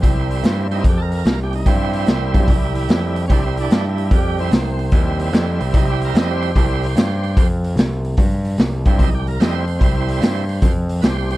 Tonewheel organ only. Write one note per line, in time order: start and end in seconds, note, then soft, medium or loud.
0.02 0.67 G3 medium
0.02 0.67 C4 soft
0.02 0.68 E4 medium
0.71 0.83 G3 soft
0.71 0.83 C4 soft
0.71 0.86 D#4 medium
0.71 0.84 E4 soft
0.89 1.00 G4 medium
0.98 1.02 A4 medium
1.02 1.40 A#4 medium
1.43 1.54 G4 medium
1.56 1.67 D#4 medium
1.66 3.25 G3 medium
1.66 2.47 C4 medium
1.66 3.26 E4 medium
3.28 4.39 G3 soft
3.28 3.45 C4 soft
3.28 3.31 C#4 medium
3.28 3.86 E4 medium
3.32 3.44 D4 medium
3.46 3.58 C4 medium
3.61 3.85 D4 medium
3.87 4.12 E4 medium
4.16 4.40 G4 medium
4.40 4.51 G3 medium
4.40 4.92 C4 medium
4.40 4.51 E4 soft
4.92 6.51 G3 medium
4.92 6.52 C4 medium
4.92 6.52 E4 medium
5.77 5.88 D#4 medium
5.90 6.02 G4 medium
6.05 6.16 A#4 medium
6.18 6.30 D#5 medium
6.31 7.48 G4 medium
6.31 7.48 C5 medium
6.56 6.87 G3 medium
6.56 6.87 C4 soft
6.56 6.87 E4 medium
8.87 9.10 G3 medium
8.87 9.10 C4 soft
8.87 9.10 E4 medium
9.02 9.14 D#4 medium
9.15 9.27 G4 medium
9.28 9.41 A#4 medium
9.40 9.65 G3 soft
9.40 9.65 C4 soft
9.40 9.65 E4 soft
9.40 9.55 D#5 medium
9.55 10.73 C5 medium
9.79 10.45 G3 medium
9.79 10.45 C4 soft
9.79 10.45 E4 medium
11.02 11.05 B4 medium
11.06 11.17 G4 medium
11.06 11.17 C5 medium
11.18 11.30 G4 medium
11.18 11.31 C5 medium
11.31 11.37 G4 medium
11.31 11.37 C5 medium